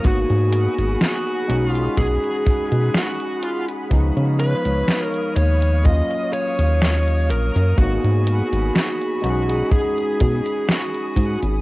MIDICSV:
0, 0, Header, 1, 6, 480
1, 0, Start_track
1, 0, Tempo, 967742
1, 21, Time_signature, 4, 2, 24, 8
1, 5761, End_track
2, 0, Start_track
2, 0, Title_t, "String machine"
2, 0, Program_c, 0, 50
2, 0, Note_on_c, 0, 87, 89
2, 22, Note_on_c, 0, 68, 82
2, 22, Note_on_c, 0, 83, 74
2, 741, Note_on_c, 0, 78, 71
2, 1920, Note_off_c, 0, 87, 0
2, 1922, Note_off_c, 0, 68, 0
2, 1929, Note_off_c, 0, 78, 0
2, 1940, Note_on_c, 0, 87, 91
2, 1941, Note_on_c, 0, 73, 83
2, 1941, Note_on_c, 0, 77, 75
2, 2882, Note_off_c, 0, 83, 0
2, 2891, Note_off_c, 0, 73, 0
2, 2901, Note_on_c, 0, 73, 84
2, 3842, Note_off_c, 0, 77, 0
2, 3851, Note_off_c, 0, 73, 0
2, 3861, Note_on_c, 0, 83, 74
2, 3862, Note_on_c, 0, 68, 84
2, 4561, Note_off_c, 0, 87, 0
2, 4583, Note_on_c, 0, 87, 87
2, 5761, Note_off_c, 0, 68, 0
2, 5761, Note_off_c, 0, 83, 0
2, 5761, Note_off_c, 0, 87, 0
2, 5761, End_track
3, 0, Start_track
3, 0, Title_t, "Lead electric guitar"
3, 0, Program_c, 1, 29
3, 23, Note_on_c, 1, 66, 92
3, 498, Note_off_c, 1, 66, 0
3, 504, Note_on_c, 1, 66, 87
3, 836, Note_off_c, 1, 66, 0
3, 836, Note_on_c, 1, 65, 87
3, 980, Note_on_c, 1, 68, 87
3, 997, Note_off_c, 1, 65, 0
3, 1460, Note_on_c, 1, 66, 73
3, 1475, Note_off_c, 1, 68, 0
3, 1703, Note_off_c, 1, 66, 0
3, 1703, Note_on_c, 1, 65, 73
3, 1808, Note_off_c, 1, 65, 0
3, 2180, Note_on_c, 1, 71, 94
3, 2488, Note_off_c, 1, 71, 0
3, 2488, Note_on_c, 1, 70, 94
3, 2641, Note_off_c, 1, 70, 0
3, 2659, Note_on_c, 1, 73, 97
3, 2883, Note_off_c, 1, 73, 0
3, 2903, Note_on_c, 1, 75, 106
3, 3125, Note_off_c, 1, 75, 0
3, 3140, Note_on_c, 1, 73, 104
3, 3621, Note_on_c, 1, 70, 87
3, 3635, Note_off_c, 1, 73, 0
3, 3844, Note_off_c, 1, 70, 0
3, 3861, Note_on_c, 1, 66, 93
3, 4321, Note_off_c, 1, 66, 0
3, 4341, Note_on_c, 1, 66, 86
3, 4801, Note_off_c, 1, 66, 0
3, 4819, Note_on_c, 1, 68, 90
3, 5301, Note_off_c, 1, 68, 0
3, 5303, Note_on_c, 1, 66, 74
3, 5649, Note_off_c, 1, 66, 0
3, 5761, End_track
4, 0, Start_track
4, 0, Title_t, "Tine electric piano"
4, 0, Program_c, 2, 4
4, 0, Control_c, 2, 64, 127
4, 12, Note_on_c, 2, 58, 73
4, 17, Note_on_c, 2, 59, 65
4, 23, Note_on_c, 2, 63, 66
4, 27, Control_c, 2, 64, 0
4, 27, Note_on_c, 2, 66, 81
4, 126, Control_c, 2, 64, 127
4, 692, Note_off_c, 2, 58, 0
4, 694, Note_off_c, 2, 59, 0
4, 697, Note_off_c, 2, 63, 0
4, 699, Note_off_c, 2, 66, 0
4, 733, Note_on_c, 2, 56, 89
4, 738, Note_on_c, 2, 61, 83
4, 743, Note_on_c, 2, 63, 81
4, 747, Control_c, 2, 64, 0
4, 748, Note_on_c, 2, 66, 100
4, 829, Control_c, 2, 64, 127
4, 1892, Note_off_c, 2, 56, 0
4, 1894, Note_off_c, 2, 61, 0
4, 1897, Note_off_c, 2, 63, 0
4, 1899, Note_off_c, 2, 66, 0
4, 1934, Note_on_c, 2, 53, 75
4, 1939, Note_on_c, 2, 56, 67
4, 1944, Note_on_c, 2, 59, 68
4, 1948, Control_c, 2, 64, 0
4, 1949, Note_on_c, 2, 63, 83
4, 2026, Control_c, 2, 64, 127
4, 2852, Note_off_c, 2, 53, 0
4, 2855, Note_off_c, 2, 56, 0
4, 2857, Note_off_c, 2, 59, 0
4, 2860, Note_off_c, 2, 63, 0
4, 2894, Note_on_c, 2, 54, 74
4, 2900, Note_on_c, 2, 58, 67
4, 2904, Note_on_c, 2, 61, 70
4, 2908, Control_c, 2, 64, 0
4, 2909, Note_on_c, 2, 65, 84
4, 2986, Control_c, 2, 64, 127
4, 3813, Note_off_c, 2, 54, 0
4, 3815, Note_off_c, 2, 58, 0
4, 3818, Note_off_c, 2, 61, 0
4, 3820, Note_off_c, 2, 65, 0
4, 3852, Note_on_c, 2, 58, 74
4, 3858, Note_on_c, 2, 59, 70
4, 3862, Note_on_c, 2, 63, 68
4, 3867, Note_on_c, 2, 66, 81
4, 3868, Control_c, 2, 64, 0
4, 3952, Control_c, 2, 64, 127
4, 4531, Note_off_c, 2, 58, 0
4, 4534, Note_off_c, 2, 59, 0
4, 4537, Note_off_c, 2, 63, 0
4, 4539, Note_off_c, 2, 66, 0
4, 4571, Note_on_c, 2, 56, 89
4, 4576, Note_on_c, 2, 61, 82
4, 4581, Note_on_c, 2, 63, 81
4, 4586, Note_on_c, 2, 66, 99
4, 4587, Control_c, 2, 64, 0
4, 4679, Control_c, 2, 64, 127
4, 5731, Note_off_c, 2, 56, 0
4, 5733, Note_off_c, 2, 61, 0
4, 5736, Note_off_c, 2, 63, 0
4, 5739, Note_off_c, 2, 66, 0
4, 5761, End_track
5, 0, Start_track
5, 0, Title_t, "Analog synth bass"
5, 0, Program_c, 3, 38
5, 23, Note_on_c, 3, 32, 94
5, 123, Note_off_c, 3, 32, 0
5, 148, Note_on_c, 3, 44, 97
5, 336, Note_off_c, 3, 44, 0
5, 388, Note_on_c, 3, 32, 80
5, 478, Note_off_c, 3, 32, 0
5, 741, Note_on_c, 3, 35, 101
5, 934, Note_off_c, 3, 35, 0
5, 979, Note_on_c, 3, 35, 84
5, 1081, Note_off_c, 3, 35, 0
5, 1349, Note_on_c, 3, 47, 77
5, 1438, Note_off_c, 3, 47, 0
5, 1940, Note_on_c, 3, 37, 92
5, 2041, Note_off_c, 3, 37, 0
5, 2068, Note_on_c, 3, 49, 93
5, 2256, Note_off_c, 3, 49, 0
5, 2309, Note_on_c, 3, 37, 78
5, 2398, Note_off_c, 3, 37, 0
5, 2661, Note_on_c, 3, 39, 103
5, 2986, Note_off_c, 3, 39, 0
5, 3268, Note_on_c, 3, 39, 81
5, 3622, Note_on_c, 3, 34, 99
5, 3629, Note_off_c, 3, 39, 0
5, 3722, Note_off_c, 3, 34, 0
5, 3748, Note_on_c, 3, 42, 93
5, 3838, Note_off_c, 3, 42, 0
5, 3858, Note_on_c, 3, 32, 96
5, 3961, Note_off_c, 3, 32, 0
5, 3989, Note_on_c, 3, 44, 96
5, 4176, Note_off_c, 3, 44, 0
5, 4228, Note_on_c, 3, 32, 82
5, 4318, Note_off_c, 3, 32, 0
5, 4581, Note_on_c, 3, 35, 102
5, 4774, Note_off_c, 3, 35, 0
5, 5064, Note_on_c, 3, 47, 95
5, 5163, Note_off_c, 3, 47, 0
5, 5537, Note_on_c, 3, 44, 89
5, 5640, Note_off_c, 3, 44, 0
5, 5668, Note_on_c, 3, 32, 83
5, 5758, Note_off_c, 3, 32, 0
5, 5761, End_track
6, 0, Start_track
6, 0, Title_t, "Drums"
6, 21, Note_on_c, 9, 42, 51
6, 24, Note_on_c, 9, 36, 105
6, 70, Note_off_c, 9, 42, 0
6, 73, Note_off_c, 9, 36, 0
6, 148, Note_on_c, 9, 42, 26
6, 198, Note_off_c, 9, 42, 0
6, 260, Note_on_c, 9, 42, 93
6, 310, Note_off_c, 9, 42, 0
6, 389, Note_on_c, 9, 42, 54
6, 438, Note_off_c, 9, 42, 0
6, 500, Note_on_c, 9, 38, 115
6, 500, Note_on_c, 9, 42, 52
6, 550, Note_off_c, 9, 38, 0
6, 550, Note_off_c, 9, 42, 0
6, 629, Note_on_c, 9, 42, 27
6, 678, Note_off_c, 9, 42, 0
6, 742, Note_on_c, 9, 42, 88
6, 791, Note_off_c, 9, 42, 0
6, 869, Note_on_c, 9, 42, 51
6, 919, Note_off_c, 9, 42, 0
6, 979, Note_on_c, 9, 36, 104
6, 981, Note_on_c, 9, 42, 53
6, 1029, Note_off_c, 9, 36, 0
6, 1031, Note_off_c, 9, 42, 0
6, 1110, Note_on_c, 9, 42, 27
6, 1159, Note_off_c, 9, 42, 0
6, 1222, Note_on_c, 9, 42, 91
6, 1223, Note_on_c, 9, 36, 112
6, 1272, Note_off_c, 9, 42, 0
6, 1273, Note_off_c, 9, 36, 0
6, 1348, Note_on_c, 9, 42, 53
6, 1398, Note_off_c, 9, 42, 0
6, 1461, Note_on_c, 9, 38, 119
6, 1461, Note_on_c, 9, 42, 53
6, 1510, Note_off_c, 9, 38, 0
6, 1510, Note_off_c, 9, 42, 0
6, 1588, Note_on_c, 9, 42, 27
6, 1638, Note_off_c, 9, 42, 0
6, 1700, Note_on_c, 9, 42, 93
6, 1750, Note_off_c, 9, 42, 0
6, 1828, Note_on_c, 9, 42, 51
6, 1878, Note_off_c, 9, 42, 0
6, 1940, Note_on_c, 9, 36, 119
6, 1942, Note_on_c, 9, 42, 51
6, 1990, Note_off_c, 9, 36, 0
6, 1991, Note_off_c, 9, 42, 0
6, 2068, Note_on_c, 9, 42, 26
6, 2118, Note_off_c, 9, 42, 0
6, 2181, Note_on_c, 9, 42, 88
6, 2231, Note_off_c, 9, 42, 0
6, 2308, Note_on_c, 9, 42, 53
6, 2358, Note_off_c, 9, 42, 0
6, 2421, Note_on_c, 9, 38, 117
6, 2421, Note_on_c, 9, 42, 53
6, 2471, Note_off_c, 9, 38, 0
6, 2471, Note_off_c, 9, 42, 0
6, 2549, Note_on_c, 9, 42, 26
6, 2599, Note_off_c, 9, 42, 0
6, 2661, Note_on_c, 9, 42, 85
6, 2710, Note_off_c, 9, 42, 0
6, 2789, Note_on_c, 9, 42, 50
6, 2838, Note_off_c, 9, 42, 0
6, 2901, Note_on_c, 9, 42, 52
6, 2904, Note_on_c, 9, 36, 120
6, 2951, Note_off_c, 9, 42, 0
6, 2954, Note_off_c, 9, 36, 0
6, 3028, Note_on_c, 9, 42, 26
6, 3078, Note_off_c, 9, 42, 0
6, 3140, Note_on_c, 9, 42, 91
6, 3190, Note_off_c, 9, 42, 0
6, 3268, Note_on_c, 9, 42, 53
6, 3318, Note_off_c, 9, 42, 0
6, 3381, Note_on_c, 9, 38, 115
6, 3381, Note_on_c, 9, 42, 52
6, 3431, Note_off_c, 9, 38, 0
6, 3431, Note_off_c, 9, 42, 0
6, 3509, Note_on_c, 9, 42, 27
6, 3559, Note_off_c, 9, 42, 0
6, 3622, Note_on_c, 9, 42, 90
6, 3672, Note_off_c, 9, 42, 0
6, 3750, Note_on_c, 9, 42, 52
6, 3800, Note_off_c, 9, 42, 0
6, 3858, Note_on_c, 9, 36, 112
6, 3863, Note_on_c, 9, 42, 48
6, 3908, Note_off_c, 9, 36, 0
6, 3912, Note_off_c, 9, 42, 0
6, 3990, Note_on_c, 9, 42, 24
6, 4040, Note_off_c, 9, 42, 0
6, 4102, Note_on_c, 9, 42, 87
6, 4151, Note_off_c, 9, 42, 0
6, 4230, Note_on_c, 9, 42, 51
6, 4279, Note_off_c, 9, 42, 0
6, 4343, Note_on_c, 9, 38, 115
6, 4343, Note_on_c, 9, 42, 50
6, 4392, Note_off_c, 9, 38, 0
6, 4392, Note_off_c, 9, 42, 0
6, 4471, Note_on_c, 9, 42, 26
6, 4520, Note_off_c, 9, 42, 0
6, 4582, Note_on_c, 9, 42, 84
6, 4632, Note_off_c, 9, 42, 0
6, 4709, Note_on_c, 9, 42, 50
6, 4759, Note_off_c, 9, 42, 0
6, 4818, Note_on_c, 9, 36, 118
6, 4822, Note_on_c, 9, 42, 51
6, 4868, Note_off_c, 9, 36, 0
6, 4871, Note_off_c, 9, 42, 0
6, 4949, Note_on_c, 9, 42, 25
6, 4998, Note_off_c, 9, 42, 0
6, 5060, Note_on_c, 9, 42, 85
6, 5063, Note_on_c, 9, 36, 96
6, 5110, Note_off_c, 9, 42, 0
6, 5113, Note_off_c, 9, 36, 0
6, 5187, Note_on_c, 9, 42, 49
6, 5237, Note_off_c, 9, 42, 0
6, 5300, Note_on_c, 9, 38, 118
6, 5300, Note_on_c, 9, 42, 50
6, 5350, Note_off_c, 9, 38, 0
6, 5350, Note_off_c, 9, 42, 0
6, 5428, Note_on_c, 9, 42, 26
6, 5477, Note_off_c, 9, 42, 0
6, 5537, Note_on_c, 9, 36, 59
6, 5541, Note_on_c, 9, 42, 85
6, 5587, Note_off_c, 9, 36, 0
6, 5590, Note_off_c, 9, 42, 0
6, 5667, Note_on_c, 9, 42, 50
6, 5717, Note_off_c, 9, 42, 0
6, 5761, End_track
0, 0, End_of_file